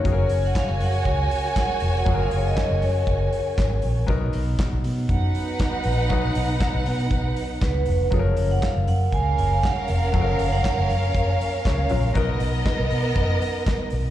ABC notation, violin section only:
X:1
M:4/4
L:1/8
Q:1/4=119
K:F#
V:1 name="Violin section"
[Fcg]8- | [Fcg]8 | z4 [DBf]4- | [DBf]8 |
z4 [CAe]4- | [CAe]8 | [B,Ad]8 |]